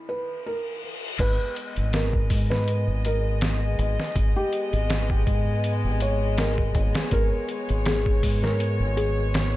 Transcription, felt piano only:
0.09 0.42 B4 medium
0.46 0.80 A#4 medium
1.20 1.53 B4 loud
1.94 2.45 A#4 medium
2.50 2.99 B4 medium
3.06 3.56 A#4 medium
4.36 4.69 G4 medium
6.02 6.35 C#5 medium
6.38 6.72 A#4 medium
7.13 7.46 A#4 loud
7.87 8.37 G#4 medium
8.43 8.92 A#4 medium
8.97 9.48 G#4 medium

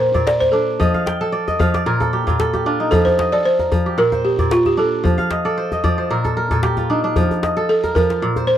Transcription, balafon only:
0.00 0.27 C5 medium
0.27 0.41 D5 loud
0.40 0.53 C5 medium
0.52 1.55 A4 medium
2.91 3.06 A4 medium
3.05 3.33 C5 medium
3.32 3.44 D5 medium
3.45 4.00 C5 medium
3.98 4.26 A#4 loud
4.25 4.52 G4 medium
4.52 4.66 F4 medium
4.66 4.78 G4 medium
4.79 6.33 A4 medium
7.69 7.97 A4 medium
7.95 8.50 A#4 medium
8.47 8.58 C5 medium

